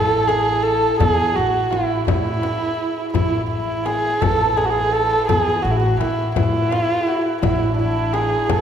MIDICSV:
0, 0, Header, 1, 6, 480
1, 0, Start_track
1, 0, Tempo, 713946
1, 674, Time_signature, 6, 3, 24, 8
1, 5789, End_track
2, 0, Start_track
2, 0, Title_t, "Santur"
2, 0, Program_c, 0, 15
2, 0, Note_on_c, 0, 64, 69
2, 0, Note_on_c, 0, 66, 63
2, 0, Note_on_c, 0, 69, 78
2, 182, Note_on_c, 0, 68, 75
2, 223, Note_off_c, 0, 69, 0
2, 421, Note_on_c, 0, 69, 77
2, 461, Note_off_c, 0, 68, 0
2, 613, Note_off_c, 0, 69, 0
2, 616, Note_on_c, 0, 69, 57
2, 658, Note_on_c, 0, 68, 80
2, 698, Note_off_c, 0, 69, 0
2, 894, Note_off_c, 0, 66, 0
2, 897, Note_on_c, 0, 66, 69
2, 1141, Note_off_c, 0, 64, 0
2, 1144, Note_on_c, 0, 64, 65
2, 1384, Note_off_c, 0, 64, 0
2, 1386, Note_on_c, 0, 64, 66
2, 2106, Note_off_c, 0, 64, 0
2, 2109, Note_on_c, 0, 64, 70
2, 2595, Note_off_c, 0, 68, 0
2, 2597, Note_on_c, 0, 68, 73
2, 2834, Note_on_c, 0, 69, 72
2, 2874, Note_off_c, 0, 68, 0
2, 2884, Note_on_c, 0, 71, 61
2, 2925, Note_off_c, 0, 69, 0
2, 2928, Note_on_c, 0, 69, 74
2, 3081, Note_off_c, 0, 66, 0
2, 3172, Note_on_c, 0, 68, 67
2, 3213, Note_off_c, 0, 69, 0
2, 3271, Note_off_c, 0, 71, 0
2, 3273, Note_on_c, 0, 71, 52
2, 3322, Note_on_c, 0, 69, 74
2, 3363, Note_off_c, 0, 68, 0
2, 3562, Note_on_c, 0, 68, 78
2, 3602, Note_off_c, 0, 69, 0
2, 3800, Note_on_c, 0, 66, 71
2, 3893, Note_off_c, 0, 66, 0
2, 3896, Note_on_c, 0, 66, 73
2, 4279, Note_off_c, 0, 64, 0
2, 4282, Note_on_c, 0, 64, 65
2, 4706, Note_off_c, 0, 68, 0
2, 4709, Note_on_c, 0, 68, 50
2, 4750, Note_off_c, 0, 66, 0
2, 4752, Note_on_c, 0, 66, 73
2, 4986, Note_off_c, 0, 64, 0
2, 4989, Note_on_c, 0, 64, 71
2, 5108, Note_off_c, 0, 71, 0
2, 5191, Note_on_c, 0, 62, 46
2, 5235, Note_off_c, 0, 64, 0
2, 5238, Note_on_c, 0, 64, 64
2, 5478, Note_off_c, 0, 68, 0
2, 5480, Note_on_c, 0, 68, 72
2, 5720, Note_on_c, 0, 69, 74
2, 5761, Note_off_c, 0, 68, 0
2, 5766, Note_on_c, 0, 71, 62
2, 5789, Note_off_c, 0, 62, 0
2, 5789, Note_off_c, 0, 64, 0
2, 5789, Note_off_c, 0, 66, 0
2, 5789, Note_off_c, 0, 69, 0
2, 5789, Note_off_c, 0, 71, 0
2, 5789, End_track
3, 0, Start_track
3, 0, Title_t, "Kamancheh"
3, 0, Program_c, 1, 110
3, 0, Note_on_c, 1, 69, 94
3, 186, Note_on_c, 1, 68, 91
3, 196, Note_off_c, 1, 69, 0
3, 421, Note_on_c, 1, 69, 94
3, 431, Note_off_c, 1, 68, 0
3, 662, Note_off_c, 1, 69, 0
3, 666, Note_on_c, 1, 68, 90
3, 909, Note_on_c, 1, 66, 83
3, 919, Note_off_c, 1, 68, 0
3, 1153, Note_on_c, 1, 64, 78
3, 1163, Note_off_c, 1, 66, 0
3, 1394, Note_off_c, 1, 64, 0
3, 1397, Note_on_c, 1, 64, 86
3, 2088, Note_off_c, 1, 64, 0
3, 2106, Note_on_c, 1, 64, 78
3, 2333, Note_off_c, 1, 64, 0
3, 2355, Note_on_c, 1, 64, 77
3, 2591, Note_on_c, 1, 68, 87
3, 2601, Note_off_c, 1, 64, 0
3, 2829, Note_on_c, 1, 69, 91
3, 2839, Note_off_c, 1, 68, 0
3, 3070, Note_on_c, 1, 68, 79
3, 3080, Note_off_c, 1, 69, 0
3, 3129, Note_on_c, 1, 66, 68
3, 3139, Note_off_c, 1, 68, 0
3, 3159, Note_on_c, 1, 68, 87
3, 3169, Note_off_c, 1, 66, 0
3, 3312, Note_on_c, 1, 69, 95
3, 3322, Note_off_c, 1, 68, 0
3, 3544, Note_off_c, 1, 69, 0
3, 3548, Note_on_c, 1, 68, 86
3, 3781, Note_on_c, 1, 66, 75
3, 3792, Note_off_c, 1, 68, 0
3, 3840, Note_on_c, 1, 64, 70
3, 3850, Note_off_c, 1, 66, 0
3, 3878, Note_on_c, 1, 66, 80
3, 3888, Note_off_c, 1, 64, 0
3, 4028, Note_off_c, 1, 66, 0
3, 4035, Note_on_c, 1, 64, 76
3, 4257, Note_off_c, 1, 64, 0
3, 4270, Note_on_c, 1, 64, 88
3, 4964, Note_off_c, 1, 64, 0
3, 4988, Note_on_c, 1, 64, 78
3, 5213, Note_off_c, 1, 64, 0
3, 5231, Note_on_c, 1, 64, 76
3, 5468, Note_on_c, 1, 68, 80
3, 5478, Note_off_c, 1, 64, 0
3, 5713, Note_on_c, 1, 69, 88
3, 5723, Note_off_c, 1, 68, 0
3, 5789, Note_off_c, 1, 69, 0
3, 5789, End_track
4, 0, Start_track
4, 0, Title_t, "Upright bass"
4, 0, Program_c, 2, 32
4, 0, Note_on_c, 2, 33, 81
4, 569, Note_off_c, 2, 33, 0
4, 670, Note_on_c, 2, 40, 95
4, 877, Note_off_c, 2, 40, 0
4, 916, Note_on_c, 2, 33, 83
4, 1121, Note_off_c, 2, 33, 0
4, 1160, Note_on_c, 2, 33, 78
4, 1363, Note_off_c, 2, 33, 0
4, 1398, Note_on_c, 2, 45, 81
4, 1602, Note_off_c, 2, 45, 0
4, 2118, Note_on_c, 2, 33, 79
4, 2733, Note_off_c, 2, 33, 0
4, 2838, Note_on_c, 2, 33, 79
4, 3453, Note_off_c, 2, 33, 0
4, 3558, Note_on_c, 2, 40, 91
4, 3761, Note_off_c, 2, 40, 0
4, 3794, Note_on_c, 2, 33, 86
4, 3999, Note_off_c, 2, 33, 0
4, 4039, Note_on_c, 2, 33, 82
4, 4242, Note_off_c, 2, 33, 0
4, 4277, Note_on_c, 2, 45, 84
4, 4480, Note_off_c, 2, 45, 0
4, 4992, Note_on_c, 2, 33, 92
4, 5608, Note_off_c, 2, 33, 0
4, 5714, Note_on_c, 2, 33, 83
4, 5789, Note_off_c, 2, 33, 0
4, 5789, End_track
5, 0, Start_track
5, 0, Title_t, "Frame drum"
5, 195, Note_on_c, 9, 64, 63
5, 263, Note_off_c, 9, 64, 0
5, 675, Note_on_c, 9, 64, 87
5, 743, Note_off_c, 9, 64, 0
5, 1161, Note_on_c, 9, 64, 59
5, 1228, Note_off_c, 9, 64, 0
5, 1399, Note_on_c, 9, 64, 85
5, 1466, Note_off_c, 9, 64, 0
5, 1636, Note_on_c, 9, 64, 60
5, 1703, Note_off_c, 9, 64, 0
5, 2115, Note_on_c, 9, 64, 86
5, 2183, Note_off_c, 9, 64, 0
5, 2594, Note_on_c, 9, 64, 57
5, 2662, Note_off_c, 9, 64, 0
5, 2837, Note_on_c, 9, 64, 82
5, 2904, Note_off_c, 9, 64, 0
5, 3076, Note_on_c, 9, 64, 61
5, 3143, Note_off_c, 9, 64, 0
5, 3557, Note_on_c, 9, 64, 83
5, 3624, Note_off_c, 9, 64, 0
5, 4039, Note_on_c, 9, 64, 62
5, 4107, Note_off_c, 9, 64, 0
5, 4277, Note_on_c, 9, 64, 82
5, 4345, Note_off_c, 9, 64, 0
5, 4521, Note_on_c, 9, 64, 63
5, 4588, Note_off_c, 9, 64, 0
5, 4996, Note_on_c, 9, 64, 93
5, 5063, Note_off_c, 9, 64, 0
5, 5471, Note_on_c, 9, 64, 61
5, 5538, Note_off_c, 9, 64, 0
5, 5711, Note_on_c, 9, 64, 88
5, 5779, Note_off_c, 9, 64, 0
5, 5789, End_track
6, 0, Start_track
6, 0, Title_t, "Tombak"
6, 191, Note_on_c, 9, 63, 62
6, 258, Note_off_c, 9, 63, 0
6, 426, Note_on_c, 9, 62, 21
6, 494, Note_off_c, 9, 62, 0
6, 667, Note_on_c, 9, 64, 82
6, 735, Note_off_c, 9, 64, 0
6, 909, Note_on_c, 9, 62, 22
6, 976, Note_off_c, 9, 62, 0
6, 1148, Note_on_c, 9, 63, 62
6, 1215, Note_off_c, 9, 63, 0
6, 1392, Note_on_c, 9, 64, 93
6, 1460, Note_off_c, 9, 64, 0
6, 1631, Note_on_c, 9, 63, 61
6, 1698, Note_off_c, 9, 63, 0
6, 1872, Note_on_c, 9, 62, 25
6, 1939, Note_off_c, 9, 62, 0
6, 2112, Note_on_c, 9, 64, 92
6, 2179, Note_off_c, 9, 64, 0
6, 2595, Note_on_c, 9, 63, 69
6, 2662, Note_off_c, 9, 63, 0
6, 2836, Note_on_c, 9, 64, 89
6, 2903, Note_off_c, 9, 64, 0
6, 3075, Note_on_c, 9, 63, 65
6, 3142, Note_off_c, 9, 63, 0
6, 3318, Note_on_c, 9, 62, 24
6, 3385, Note_off_c, 9, 62, 0
6, 3558, Note_on_c, 9, 64, 86
6, 3625, Note_off_c, 9, 64, 0
6, 4036, Note_on_c, 9, 63, 74
6, 4104, Note_off_c, 9, 63, 0
6, 4277, Note_on_c, 9, 64, 82
6, 4344, Note_off_c, 9, 64, 0
6, 4515, Note_on_c, 9, 63, 68
6, 4582, Note_off_c, 9, 63, 0
6, 4755, Note_on_c, 9, 62, 21
6, 4822, Note_off_c, 9, 62, 0
6, 4995, Note_on_c, 9, 64, 75
6, 5063, Note_off_c, 9, 64, 0
6, 5477, Note_on_c, 9, 63, 69
6, 5544, Note_off_c, 9, 63, 0
6, 5711, Note_on_c, 9, 64, 86
6, 5779, Note_off_c, 9, 64, 0
6, 5789, End_track
0, 0, End_of_file